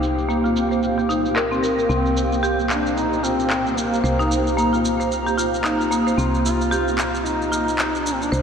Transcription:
0.00 1.87 C2 medium
0.00 8.42 A#3 medium
0.00 8.42 C4 medium
0.00 8.42 G4 medium
0.00 8.42 C5 medium
0.00 2.09 G5 medium
0.00 shaker medium
0.18 shaker soft
0.29 0.38 A#3 medium
0.29 shaker soft
0.44 0.55 F4 medium
0.44 shaker soft
0.56 shaker medium
0.71 0.82 C5 medium
0.71 shaker soft
0.83 shaker soft
0.98 1.08 G4 medium
0.98 shaker soft
1.09 1.24 D#4 medium
1.09 shaker medium
1.26 shaker soft
1.36 1.50 A#4 medium
1.36 clap medium
1.36 shaker soft
1.51 1.58 C4 medium
1.51 shaker soft
1.62 1.77 A#4 medium
1.62 shaker medium
1.78 1.89 A#4 medium
1.78 shaker soft
1.89 4.01 C2 medium
1.89 1.98 C4 medium
1.89 2.39 C4 medium
1.89 shaker soft
2.06 8.42 A#5 medium
2.06 shaker soft
2.17 shaker medium
2.33 shaker soft
2.43 2.58 G4 medium
2.43 shaker soft
2.60 shaker soft
2.70 2.98 D4 medium
2.70 clap medium
2.70 shaker medium
2.86 shaker soft
2.97 3.25 D#4 loud
2.97 shaker soft
3.13 shaker soft
3.23 3.79 C4 medium
3.23 3.38 F4 medium
3.23 shaker medium
3.40 shaker soft
3.50 clap medium
3.50 shaker soft
3.67 shaker soft
3.77 4.58 A#3 medium
3.77 shaker medium
3.94 shaker soft
4.04 6.16 C2 medium
4.04 4.19 C5 medium
4.04 shaker soft
4.19 4.30 D#4 medium
4.19 shaker soft
4.32 shaker medium
4.47 shaker soft
4.57 4.66 A#3 medium
4.57 shaker soft
4.73 4.83 F4 medium
4.73 shaker soft
4.85 shaker medium
5.00 5.10 C5 medium
5.00 shaker soft
5.12 shaker soft
5.26 5.37 G4 medium
5.26 shaker soft
5.38 5.63 F4 medium
5.38 shaker medium
5.54 shaker soft
5.64 5.73 D#4 loud
5.64 clap medium
5.64 shaker soft
5.80 5.91 F4 medium
5.80 shaker soft
5.91 6.05 A#3 medium
5.91 shaker medium
6.07 6.17 C5 medium
6.07 shaker soft
6.18 8.30 C2 medium
6.18 6.27 C4 medium
6.18 shaker soft
6.34 shaker soft
6.44 7.26 F4 medium
6.44 shaker medium
6.61 shaker soft
6.71 6.86 G4 medium
6.71 shaker soft
6.88 shaker soft
6.98 clap medium
6.98 shaker medium
7.15 shaker soft
7.25 8.07 D#4 medium
7.25 shaker soft
7.42 shaker soft
7.52 7.67 F4 medium
7.52 shaker medium
7.68 shaker soft
7.79 clap medium
7.79 shaker soft
7.95 shaker soft
8.05 8.15 D4 medium
8.05 shaker medium
8.14 8.23 C4 medium
8.21 8.42 D4 medium
8.21 shaker soft
8.32 8.42 C2 medium
8.32 8.42 C5 medium
8.32 shaker soft

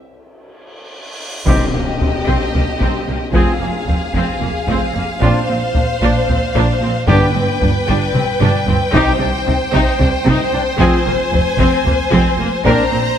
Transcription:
0.00 cymbal swell soft
1.45 1.53 C2 medium
1.45 2.23 C3 medium
1.45 1.54 C3 medium
1.45 1.71 C4 medium
1.45 1.66 C4 medium
1.45 1.66 D#4 medium
1.45 1.66 G4 medium
1.45 3.31 G4 medium
1.45 3.31 D#5 medium
1.45 taiko medium
1.45 tam-tam medium
1.45 impact medium
1.73 1.82 C2 soft
1.73 1.81 C3 medium
1.73 1.82 A#3 soft
2.00 2.08 C2 medium
2.00 2.09 C3 medium
2.00 2.09 C4 soft
2.00 taiko low medium
2.27 2.35 C2 medium
2.27 2.36 C3 medium
2.27 2.52 C4 medium
2.27 taiko medium
2.53 2.61 C2 medium
2.53 2.63 C3 medium
2.53 2.62 A#3 soft
2.53 taiko low medium
2.80 2.88 C2 medium
2.80 2.88 C3 medium
2.80 3.06 C4 medium
2.80 taiko medium
3.07 3.15 C2 medium
3.07 3.15 C3 medium
3.07 3.16 A#3 medium
3.33 3.41 F1 medium
3.33 3.42 F2 medium
3.33 3.53 C4 medium
3.33 3.59 C4 medium
3.33 3.53 F4 medium
3.33 5.17 G#4 medium
3.33 3.53 G#4 medium
3.33 7.04 F5 medium
3.33 taiko loud
3.60 3.68 F1 medium
3.60 3.70 F2 medium
3.60 3.69 A#3 soft
3.87 3.95 F1 medium
3.87 3.95 F2 medium
3.87 3.96 C4 medium
3.87 taiko low medium
4.14 4.22 F1 medium
4.14 4.22 F2 medium
4.14 4.40 C4 medium
4.14 taiko medium
4.41 4.49 F1 medium
4.41 4.49 F2 medium
4.41 4.50 A#3 medium
4.41 taiko low medium
4.67 4.76 F1 medium
4.67 4.75 F2 medium
4.67 4.93 C4 medium
4.67 taiko medium
4.94 5.02 F1 medium
4.94 5.02 F2 medium
4.94 5.04 A#3 medium
5.20 5.30 A#1 medium
5.20 5.29 A#2 medium
5.20 5.39 C4 medium
5.20 5.39 D4 medium
5.20 5.47 D4 medium
5.20 5.40 F4 medium
5.20 7.04 C5 medium
5.20 taiko loud
5.48 5.57 A#1 medium
5.48 5.56 A#2 medium
5.48 5.57 C4 soft
5.75 5.83 A#1 medium
5.75 5.83 A#2 medium
5.75 5.84 D4 medium
5.75 taiko low medium
6.01 6.09 A#1 medium
6.01 6.10 A#2 medium
6.01 6.27 D4 medium
6.01 taiko medium
6.29 6.37 A#1 medium
6.29 6.37 A#2 medium
6.29 6.37 C4 medium
6.29 taiko low medium
6.55 6.63 A#1 medium
6.55 6.63 A#2 loud
6.55 6.80 D4 medium
6.55 taiko medium
6.81 6.90 A#1 medium
6.81 6.89 A#2 medium
6.81 6.90 C4 medium
7.07 7.16 G1 medium
7.07 7.84 G2 loud
7.07 7.17 G2 medium
7.07 7.27 B3 medium
7.07 7.27 D4 medium
7.07 7.33 D4 medium
7.07 7.27 G4 medium
7.07 8.91 B4 medium
7.07 10.75 G5 medium
7.07 taiko loud
7.34 7.44 G1 medium
7.34 7.43 G2 medium
7.34 7.42 C4 medium
7.61 7.70 G1 medium
7.61 7.69 G2 medium
7.61 7.69 D4 medium
7.61 taiko low medium
7.87 7.97 G1 medium
7.87 7.95 G2 medium
7.87 8.13 D4 medium
7.87 taiko medium
8.13 8.22 G1 medium
8.13 8.21 G2 medium
8.13 8.22 C4 medium
8.13 taiko mid medium
8.40 8.48 G1 medium
8.40 8.48 G2 medium
8.40 8.66 D4 medium
8.40 taiko mid medium
8.67 8.75 G1 medium
8.67 8.75 G2 medium
8.67 8.76 C4 medium
8.67 taiko low loud
8.93 9.02 C2 loud
8.93 9.01 C3 medium
8.93 9.69 C3 loud
8.93 9.12 C4 medium
8.93 9.18 D#4 loud
8.93 9.13 D#4 medium
8.93 9.13 G4 medium
8.93 12.61 C5 medium
8.93 taiko loud
9.19 9.29 C2 medium
9.19 9.27 C3 medium
9.19 9.28 D4 medium
9.46 9.55 C2 medium
9.46 9.54 C3 medium
9.46 9.54 D#4 medium
9.46 taiko low medium
9.73 9.81 C2 medium
9.73 9.81 C3 medium
9.73 9.98 D#4 medium
9.73 taiko medium
9.99 10.07 C2 medium
9.99 10.07 C3 medium
9.99 10.08 D4 medium
9.99 taiko low medium
10.26 10.34 C2 loud
10.26 10.34 C3 loud
10.26 10.51 D#4 loud
10.26 taiko medium
10.52 10.60 C2 medium
10.52 10.61 C3 medium
10.52 10.61 D4 medium
10.78 10.86 F1 loud
10.78 10.87 F2 loud
10.78 11.04 C4 loud
10.78 10.98 C4 medium
10.78 10.98 F4 medium
10.78 10.98 G#4 medium
10.78 12.66 G#5 medium
10.78 taiko loud
11.06 11.15 F1 medium
11.06 11.14 F2 medium
11.06 11.15 A#3 medium
11.32 11.40 F1 medium
11.32 11.40 F2 medium
11.32 11.41 C4 medium
11.32 taiko low medium
11.58 11.66 F1 medium
11.58 11.67 F2 medium
11.58 11.84 C4 loud
11.58 taiko medium
11.85 11.93 F1 medium
11.85 11.93 F2 medium
11.85 11.94 A#3 medium
11.85 taiko low medium
12.12 12.20 F1 medium
12.12 12.20 F2 loud
12.12 12.37 C4 loud
12.12 taiko medium
12.38 12.46 F1 medium
12.38 12.48 F2 medium
12.38 12.47 A#3 medium
12.64 12.73 A#1 loud
12.64 12.74 A#2 loud
12.64 12.84 C4 medium
12.64 12.83 D4 medium
12.64 12.90 D4 medium
12.64 12.84 A#4 medium
12.64 13.18 C5 medium
12.64 13.18 A#5 medium
12.64 taiko loud
12.91 13.00 A#1 medium
12.91 13.00 A#2 medium
12.91 12.99 C4 medium

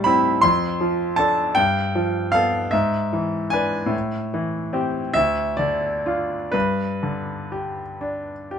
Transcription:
0.00 0.38 A2 soft
0.00 0.28 G3 soft
0.00 0.45 A5 medium
0.00 0.42 B5 medium
0.06 0.40 C4 soft
0.06 0.40 E4 soft
0.41 1.53 F2 medium
0.41 1.18 C6 medium
0.81 1.41 F3 soft
1.16 1.53 D4 soft
1.16 1.53 A4 soft
1.16 1.55 A5 medium
1.55 2.69 G2 medium
1.55 2.32 G5 medium
1.95 2.57 F3 soft
2.32 2.69 B3 soft
2.32 2.69 A4 soft
2.32 2.71 F5 medium
2.71 3.90 G#2 medium
2.71 3.51 E5 medium
3.13 3.77 E3 soft
3.50 3.89 D4 soft
3.50 3.90 B4 soft
3.50 3.92 G#5 medium
3.86 5.09 A2 soft
4.34 4.99 E3 soft
4.73 5.11 C4 soft
4.73 5.12 G4 soft
5.14 6.50 D2 soft
5.14 5.58 E5 medium
5.57 6.34 D3 soft
5.57 6.53 D5 medium
6.06 6.50 D4 soft
6.06 6.50 F4 soft
6.52 8.59 G2 soft
6.52 8.59 B4 medium
7.03 7.82 D3 soft
7.52 8.31 G4 soft
8.01 8.59 D4 soft
8.51 8.59 G4 soft

